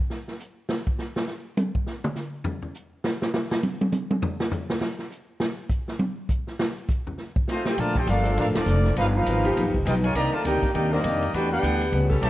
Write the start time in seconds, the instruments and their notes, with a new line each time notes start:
0.10 snare
0.28 snare
0.39 hi-hat pedal
0.68 snare
0.87 kick
0.98 snare, hi-hat pedal
1.16 snare
1.28 snare
1.57 hi-hat pedal, high tom
1.75 kick
1.87 snare
2.04 mid tom
2.16 snare, hi-hat pedal
2.44 floor tom
2.62 floor tom
2.75 hi-hat pedal
3.04 snare
3.22 snare
3.34 snare, hi-hat pedal
3.52 snare
3.63 high tom
3.81 high tom
3.93 hi-hat pedal, high tom
4.11 high tom
4.23 floor tom
4.40 snare
4.52 floor tom, hi-hat pedal
4.70 snare
4.81 snare
4.99 snare
5.11 hi-hat pedal
5.40 snare
5.70 kick, hi-hat pedal
5.88 snare
6.00 high tom
6.29 kick, hi-hat pedal
6.47 snare
6.59 snare
6.89 kick, hi-hat pedal
7.07 floor tom
7.18 snare
7.36 kick
7.48 trombone section A3 C4 F4, trumpet section D#4 A4 C5 F5, snare, hi-hat pedal
7.65 trumpet section D#4 A4 C5 G5, trombone section G4, snare
7.77 upright bass A#1, hollow-body jazz guitar A#2 F3 A3 D4, trombone section D3 F3 A3, trumpet section F4 A#4 D5 A5, kick, ride
7.96 trumpet section D#4 A4 C5 G5, trombone section G4, kick
8.07 upright bass G1, hollow-body jazz guitar A#2 F3 A3 D4, trombone section A3 D4 F4, trumpet section D4 A4 A#4 F5, kick, hi-hat pedal, ride
8.24 saxophone section F3 A#3 D4 A4, ride
8.37 upright bass A1, hollow-body jazz guitar A#2 F3 A3 D4, trombone section A3 D4 F4, trumpet section D4 A4 A#4 F5, kick, snare, ride
8.47 upright bass F1
8.55 upright bass D1, trombone section F3 D4 A4, trumpet section A#3 F4 A4 D5, snare, ride
8.66 upright bass F1, hollow-body jazz guitar A#2 F3 A3 D4, hi-hat pedal
8.84 snare
8.96 upright bass G1, hollow-body jazz guitar G2 F3 B3 D#4, trombone section F3 B3 F4, trumpet section D#4 A#4 B4 F5, kick, ride
9.15 trombone section F3 B3 F4, trumpet section D#4 A#4 B4 F5
9.26 upright bass G#1, hollow-body jazz guitar G2 F3 B3 D#4, kick, hi-hat pedal, ride
9.45 saxophone section F3 B3 D#4 G4, ride
9.56 upright bass A#1, hollow-body jazz guitar G2 F3 B3 D#4, kick, ride
9.66 upright bass G1
9.74 upright bass F1, kick
9.85 upright bass B1, hollow-body jazz guitar G2 F3 B3 D#4, trombone section B3 D#4 G4, trumpet section F4 B4 D#5 G5, kick, hi-hat pedal, ride
10.03 trombone section G#3, trumpet section F4 A#4 C#5 G#5, ride
10.15 upright bass C2, hollow-body jazz guitar C3 D#3 A#3 D4, saxophone section D#3 C4 D4 A#4, trombone section D#3 G3 A#3, trumpet section G4 D5 D#5 A#5, kick, ride
10.33 trombone section A3, trumpet section F4 A#4 D5 A5
10.45 upright bass D2, hollow-body jazz guitar C3 D#3 A#3 D4, trombone section A#3 D#4 G4, trumpet section D#4 A#4 D5 G5, kick, hi-hat pedal, ride
10.63 muted upright bass stroke, kick, ride
10.73 upright bass D#2, hollow-body jazz guitar C3 D#3 A#3, trombone section A#3 D#4 G4, trumpet section D#4 A#4 D5 G5, kick, ride
10.77 hollow-body jazz guitar D4
10.92 saxophone section D#3 C4 D4 A#4, trombone section G3 A#3 D#4, trumpet section A#3 G4 D5 D#5
11.03 upright bass F2, hollow-body jazz guitar C3 D#3 A#3 D4, kick, hi-hat pedal, ride
11.22 ride
11.33 upright bass E2, hollow-body jazz guitar E3 A3 D4 G4, trombone section B3 D4 G4, trumpet section D4 F#4 B4 G5, kick, ride
11.51 trombone section B3 D4 G4, trumpet section D4 B4 F#5 G5
11.62 upright bass D2, hollow-body jazz guitar E3 A3 D4 G4, kick, hi-hat pedal, ride
11.81 ride
11.92 upright bass C#2, hollow-body jazz guitar A2 G3 B3 C#4, kick, ride
12.10 saxophone section G3 B3 C#4 A4, kick
12.22 upright bass B1, hollow-body jazz guitar A2 G3 B3 C#4, trombone section C#3 E3 A3, trumpet section G4 C#5 E5 A5, kick, hi-hat pedal, ride